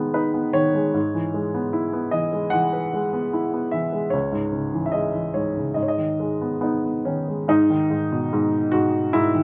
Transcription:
Already playing: D#2 D#3 G#3 B3 D#4
0.14 D#4 B4
0.34 B3
0.53 D#3 C#5
0.74 G#3
0.94 G#2
1.14 E3
1.34 G#3
1.54 B3
1.73 E4
1.93 B3
2.11 E3 D#5
2.33 G#3
2.50 E3 F#5
2.73 B4
2.94 G#3
3.13 B3
3.33 E4
3.54 B3
3.71 E3 E5
3.93 G#3
4.10 C#2 C#5
4.32 G#2
4.53 C#3
4.74 E3
4.86 E5
4.92 G#3 D#5
5.14 E3
5.34 G#2 C#5
5.57 C#3
5.74 G#2 D#5
5.82 C#5
5.88 D#5
5.98 D#3
6.20 G#3
6.41 B3
6.61 B3 D#4
6.85 B3
7.05 D#3 C#4
7.28 G#3
7.48 G#2 D#4
7.70 D#3
7.91 G#2
8.12 B2
8.33 G#2
8.72 G#2 F#4
9.13 G#2 E4
9.35 D#3

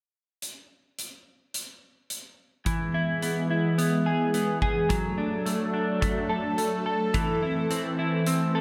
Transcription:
0.42 closed hi-hat
0.98 closed hi-hat
1.54 closed hi-hat
2.10 closed hi-hat
2.66 E3 G#3 B3 G#4, kick, closed hi-hat
2.94 E4
3.22 B3, closed hi-hat
3.50 E4
3.78 B3, closed hi-hat
4.06 G#4
4.34 B3, closed hi-hat
4.62 G#4, kick
4.89 F#3 A3 D4 A4, kick, closed hi-hat
5.18 D4
5.46 A3, closed hi-hat
5.74 D4
6.01 A3, kick, closed hi-hat
6.29 A4
6.58 A3, closed hi-hat
6.86 A4
7.14 E3 A3 C4, kick, closed hi-hat
7.42 E4
7.70 C4, closed hi-hat
7.99 E4
8.26 C4, closed hi-hat
8.55 A4

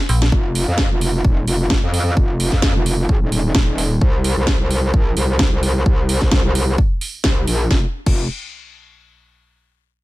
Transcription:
0.09 A#1, open hi-hat
0.22 snare
0.32 F1, kick
0.55 open hi-hat
0.68 F2
0.78 kick, snare
0.91 F1
1.01 open hi-hat
1.25 D#1, kick
1.48 F1, open hi-hat
1.70 kick, snare
1.83 F2
1.94 open hi-hat
2.17 F1, kick
2.40 open hi-hat
2.52 F2, kick, snare
2.62 kick, snare
2.76 F1
2.86 open hi-hat
3.09 G#1, kick
3.22 D#1
3.32 open hi-hat
3.55 D#1, kick, snare
3.78 open hi-hat
4.01 C2, kick
4.24 open hi-hat
4.37 C2
4.47 kick, snare
4.60 C2
4.71 open hi-hat
4.94 A#1, kick
5.17 C2, open hi-hat
5.39 kick, snare
5.53 C2
5.63 open hi-hat
5.86 C2, kick
6.09 open hi-hat
6.21 C2, kick, snare
6.31 kick, snare
6.45 C2
6.55 open hi-hat
6.78 kick
7.01 open hi-hat
7.24 C2, kick, snare
7.47 A#1, open hi-hat
7.71 F1, kick, snare
8.06 F1, kick, crash

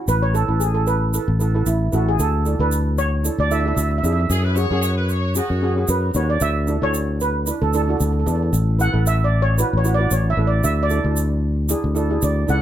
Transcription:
0.08 A1 B4, shaker
0.22 C#5
0.34 E4 A4 B4, shaker
0.48 A1 E4 A4 B4
0.60 G#4, shaker
0.74 A4
0.87 B4, shaker
1.14 E4 A4 B4, shaker
1.28 A1
1.40 E4 A4 B4, shaker
1.54 E4 A4 B4
1.66 A1 E4, shaker
1.92 A1 E4 F#4 A4 B4, shaker
2.09 G#4
2.19 D2 A4, shaker
2.45 D4 E4 A4, shaker
2.59 D2 D4 E4 A4 B4
2.72 shaker
2.98 C#5, shaker
3.23 D4 E4 A4, shaker
3.38 D2 D5
3.50 D4 E4 A4 E5, shaker
3.60 E5
3.65 D4 E4 A4 E5
3.75 D2 E5, shaker
3.83 E5
3.91 E5
3.98 E5
4.03 F2 D4 E4 G#4 E5, shaker
4.13 E5
4.20 E5
4.30 F#2 G#4, shaker
4.43 B4
4.56 C#4 F#4 G#4 C#5, shaker
4.70 F#2 C#4 F#4 G#4
4.82 C#5, shaker
4.97 B4
5.09 C#5, shaker
5.35 C#4 F#4 G#4, shaker
5.50 F#2
5.62 C#4 F#4 G#4
5.76 C#4 F#4 G#4
5.88 F#2 B4, shaker
6.14 D#2 C#4 F#4 B4 C#5, shaker
6.30 D5
6.41 D2 E5, shaker
6.67 D4 E4 A4, shaker
6.81 D2 D4 E4 A4 C#5
6.94 shaker
7.20 B4, shaker
7.46 D4 E4 B4, shaker
7.62 D2 A4
7.73 D4 E4 A4, shaker
7.82 A4
7.88 D4 E4 F#4 A4
7.97 D2 A4, shaker
8.04 A4
8.12 A4
8.19 A4
8.26 E2 D4 E4 A4, shaker
8.35 A4
8.42 A4
8.53 A1, shaker
8.79 E4 A4 B4 F#5, shaker
8.93 A1 E4 A4 B4
9.06 E5, shaker
9.24 D5
9.42 C#5
9.58 E4 F#4 B4, shaker
9.73 A1
9.77 C#5
9.84 E4 F#4 B4, shaker
9.94 D5
9.98 E4 F#4 B4
10.11 A1 C#5, shaker
10.30 E5
10.37 A1 E4 A4 B4
10.47 D5
10.64 D2 E5, shaker
10.83 D5
10.90 D4 E4 A4, shaker
11.04 D2 D4 E4 A4
11.17 shaker
11.69 D4 E4 G#4, shaker
11.84 D2
11.95 D4 E4 A4, shaker
12.09 D4 E4 G#4
12.22 D2 D5, shaker
12.47 C#2 D4 E4 A4 F#5, shaker

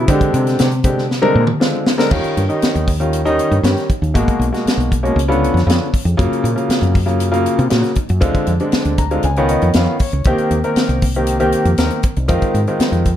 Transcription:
0.08 D3 G#3 C4 G4, kick, closed hi-hat
0.21 kick, closed hi-hat
0.34 C3, closed hi-hat
0.47 snare, closed hi-hat
0.59 C3, snare, closed hi-hat
0.71 closed hi-hat
0.84 D3 G#3 C4 G4, kick, closed hi-hat
0.98 snare
1.09 C4 G#4, snare
1.22 D3 G#3 C4 A#4, high tom
1.35 A#2
1.47 C4 G4, mid tom
1.60 D3 G#3 C4 F4, snare
1.86 snare
1.98 D3 G#3 C4 A#4, snare
2.11 D#2 D#3 G3 C#4 F4, kick, crash
2.24 muted fretless electric bass stroke, closed hi-hat
2.37 G2, closed hi-hat
2.49 D#3 G3 C#4 D#4, closed hi-hat
2.62 muted fretless electric bass stroke, snare, closed hi-hat
2.75 D#2, closed hi-hat
2.87 kick, open hi-hat
3.00 D#3 G3 C#4 F4, closed hi-hat
3.13 closed hi-hat
3.25 D#3 G3 C#4 D#4, closed hi-hat
3.39 closed hi-hat
3.51 G2, closed hi-hat
3.63 G2 D#3 G3 C#4 G4, snare, closed hi-hat
3.77 snare, closed hi-hat
3.89 C#4 D#4, muted fretless electric bass stroke, kick, closed hi-hat
4.02 D#2 C#4 F4, closed hi-hat
4.14 G#1 B2 G#3 A#3 F#4, kick, closed hi-hat
4.28 kick, closed hi-hat
4.39 B1, closed hi-hat
4.52 B2 G#3 A#3 F#4, snare, closed hi-hat
4.66 muted fretless electric bass stroke, snare, closed hi-hat
4.77 B1, closed hi-hat
4.92 kick, closed hi-hat
5.03 B2 G#3 A#3 C#4, closed hi-hat
5.16 C#2, closed hi-hat
5.28 D3 B3 C#4 F4, closed hi-hat
5.44 closed hi-hat
5.54 F2, closed hi-hat
5.58 snare
5.66 F2 D3 B3 C#4 F4, closed hi-hat
5.71 snare
5.92 C#4 F4, muted fretless electric bass stroke, kick, open hi-hat
6.05 F2 C#4 G#4, closed hi-hat
6.17 F#2 C#3 F#3 A#3 F4, kick, closed hi-hat
6.31 muted fretless electric bass stroke, closed hi-hat
6.44 A#2, closed hi-hat
6.56 C#3 F#3 A#3 F4, closed hi-hat
6.69 muted fretless electric bass stroke, snare, closed hi-hat
6.82 F#2, closed hi-hat
6.95 kick, open hi-hat
7.06 C#3 F#3 A#3 F4, closed hi-hat
7.20 closed hi-hat
7.32 C#3 F#3 A#3 F4, closed hi-hat
7.46 closed hi-hat
7.58 C3, closed hi-hat
7.70 A#2 C#3 F#3 A#3 F#4, snare, closed hi-hat
7.83 snare, closed hi-hat
7.95 A#3 D#4, muted fretless electric bass stroke, kick, closed hi-hat
8.09 F#2 A#3 F4, closed hi-hat
8.21 D2 D3 G#3 C4 F4, kick, closed hi-hat
8.34 kick, closed hi-hat
8.47 F2, closed hi-hat
8.60 D3 G#3 C4 D4, closed hi-hat
8.72 muted fretless electric bass stroke, snare, closed hi-hat
8.85 D2, closed hi-hat
8.98 A#5, kick, closed hi-hat
9.11 D3 G#3 C4 F4, closed hi-hat
9.23 C#2 G#5, closed hi-hat
9.36 D#3 B3 C#4 F4, closed hi-hat
9.49 D#5, closed hi-hat
9.62 F2, closed hi-hat
9.73 F2 D#3 B3 C#4 F4 F5, snare, closed hi-hat
9.99 C#4 F4 C#5, muted fretless electric bass stroke, kick, open hi-hat
10.12 C#2 C#4 F4, closed hi-hat
10.24 C2 D#3 A#3 C4 G4, kick, closed hi-hat
10.38 muted fretless electric bass stroke, closed hi-hat
10.51 D#2, closed hi-hat
10.64 D#3 A#3 C4 A#4, closed hi-hat
10.76 muted fretless electric bass stroke, snare, closed hi-hat
10.89 C2, closed hi-hat
11.02 kick, open hi-hat
11.14 D#3 A#3 C4 G4, closed hi-hat
11.27 closed hi-hat
11.40 D#3 A#3 C4 G4, closed hi-hat
11.52 closed hi-hat
11.65 F2, closed hi-hat
11.78 D#2 D#3 A#3 C4 A#4, snare, closed hi-hat
11.90 closed hi-hat
12.03 C4 A#4, muted fretless electric bass stroke, kick, closed hi-hat
12.16 C2 C4 D#4, closed hi-hat
12.28 F2 D#3 G#3 C4 F4, kick, closed hi-hat
12.42 muted fretless electric bass stroke, kick, closed hi-hat
12.54 G#2, closed hi-hat
12.67 D#3 G#3 C4 F4, closed hi-hat
12.79 muted fretless electric bass stroke, snare, closed hi-hat
12.92 F2, closed hi-hat
13.05 kick, closed hi-hat

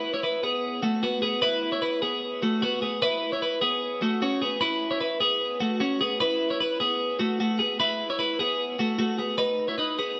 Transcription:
Already playing: E4 B4
0.14 E4 C#5
0.23 E4 B4
0.43 B3 G#4
0.83 A3 F#4
1.03 B3 F#4
1.22 B3 G#4
1.42 E4 B4
1.72 E4 C#5
1.82 E4 B4
2.02 B3 G#4
2.43 A3 F#4
2.62 B3 F#4
2.82 B3 G#4
3.02 E4 B4
3.32 E4 C#5
3.42 E4 B4
3.61 B3 G#4
4.02 A3 F#4
4.22 C#4 F#4
4.42 B3 G#4
4.61 E4 B4
4.91 E4 C#5
5.01 E4 B4
5.20 B3 G#4
5.60 A3 F#4
5.80 C#4 F#4
6.01 B3 G#4
6.20 E4 B4
6.50 E4 C#5
6.60 E4 B4
6.80 B3 G#4
7.19 A3 F#4
7.40 A3 F#4
7.59 B3 G#4
7.80 E4 B4
8.10 E4 C#5
8.19 E4 B4
8.39 B3 G#4
8.79 A3 F#4
8.99 A3 F#4
9.19 B3 G#4
9.38 D#4 B4
9.68 E4 C#5
9.78 D#4 B4
9.99 B3 G#4

